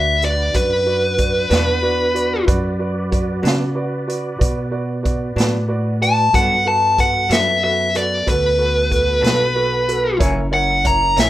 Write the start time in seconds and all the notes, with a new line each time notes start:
Already playing: D2 D4 F#4 B4 D5 E5
0.22 F#4 B4 D5, closed hi-hat
0.54 F#2 F#4 B4 D5, kick, closed hi-hat
0.86 F#4 B4 D5
1.17 F#4 B4 D5, kick, closed hi-hat
1.50 E2 B2 F#3 B3 D4 F#4 B4 D5, snare, closed hi-hat
1.82 F#4 B4 D5
2.14 F#4 B4 D5, closed hi-hat
2.46 F#2 F#4 B4 D5, kick, closed hi-hat
2.79 F#4 B4 D5
3.11 F#4 B4 D5, kick, closed hi-hat
3.42 B2 C#3 F#3 B3 D4 F#4 B4 D5, closed hi-hat
3.47 snare
3.75 F#4 B4 D5
4.08 F#4 B4 D5, closed hi-hat
4.38 B2 F#4 B4 D5, kick, closed hi-hat
4.71 F#4 B4 D5
5.03 F#4 B4 D5, kick, closed hi-hat
5.36 A2 B2 F#3 B3 D4 F#4 B4 D5, closed hi-hat
5.40 snare
5.68 F#4 B4 D5
6.01 F#4 B4 D5 A5, closed hi-hat
6.33 G2 F#3 B3 D4 F#4 A4 B4 F#5, kick, closed hi-hat
6.66 F#4 A4 B4 A5
6.98 F#4 A4 B4 F#5, kick, closed hi-hat
7.29 F#2 G2 F#3 B3 D4 F#4 A4 B4 E5, snare, closed hi-hat
7.63 F#4 A4 B4 E5
7.95 F#4 A4 B4 D5, closed hi-hat
8.26 D2 F#4 A4 B4, kick, closed hi-hat
8.58 F#4 A4 B4
8.91 F#4 A4 B4, kick, closed hi-hat
9.21 B1 G2 F#3 B3 D4 F#4 A4 B4, closed hi-hat
9.26 snare
9.55 F#4 A4 B4
9.88 F#4 A4 B4, closed hi-hat
10.18 F#1 F#2 E3 A#3 C#4 E4 A#4 C#5, kick, closed hi-hat
10.51 E4 A#4 C#5 F#5
10.84 E4 A#4 C#5 A#5, kick, closed hi-hat
11.16 A#1 F#2 E3 A#3 C#4 E4 A#4 C#5 E5, snare, closed hi-hat